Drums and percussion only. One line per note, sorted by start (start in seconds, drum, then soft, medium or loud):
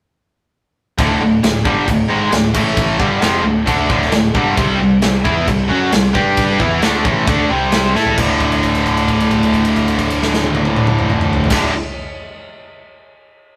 0.98 kick loud
0.98 crash medium
1.44 snare loud
1.44 crash medium
1.65 kick loud
1.88 kick loud
1.88 crash medium
2.32 snare loud
2.32 crash medium
2.54 kick medium
2.54 crash medium
2.77 kick loud
2.77 crash medium
3.00 kick loud
3.22 snare loud
3.22 crash medium
3.67 kick loud
3.67 crash medium
3.90 kick loud
4.02 snare soft
4.12 snare loud
4.12 crash medium
4.35 kick loud
4.57 kick loud
4.57 crash medium
5.02 snare loud
5.02 crash medium
5.25 kick loud
5.48 kick medium
5.48 crash medium
5.92 snare loud
5.92 crash medium
6.15 kick loud
6.37 kick loud
6.37 crash medium
6.60 kick loud
6.82 snare loud
6.82 crash medium
7.05 kick loud
7.27 kick loud
7.27 crash medium
7.72 snare loud
7.72 crash medium
7.96 snare medium
8.05 floor tom medium
8.18 kick loud
8.18 crash medium
8.40 kick medium
8.40 crash soft
8.52 crash soft
8.63 kick medium
8.63 crash soft
8.75 crash soft
8.86 kick medium
8.86 crash soft
8.97 crash medium
9.08 kick medium
9.08 crash soft
9.20 crash soft
9.31 kick medium
9.31 crash soft
9.43 crash soft
9.54 kick medium
9.54 crash soft
9.65 crash medium
9.76 kick medium
9.76 crash soft
9.88 crash medium
9.99 kick medium
9.99 crash medium
10.10 crash medium
10.22 snare medium
10.34 snare medium
10.44 high tom loud
10.55 high tom medium
10.65 high tom medium
10.76 mid tom loud
10.87 mid tom loud
10.99 mid tom medium
11.10 mid tom loud
11.21 mid tom loud
11.33 floor tom loud
11.44 floor tom loud
11.50 kick loud
11.50 snare loud
11.50 crash loud